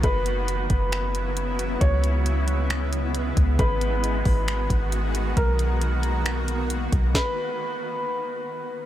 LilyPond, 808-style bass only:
\new Staff \with { instrumentName = "808-style bass" } { \clef bass \time 4/4 \key b \major \tempo 4 = 135 fis,,4. fis,,2~ fis,,8 | cis,2.~ cis,8 cis,8 | gis,,4. gis,,4 gis,,4. | b,,2.~ b,,8 b,,8 |
r1 | }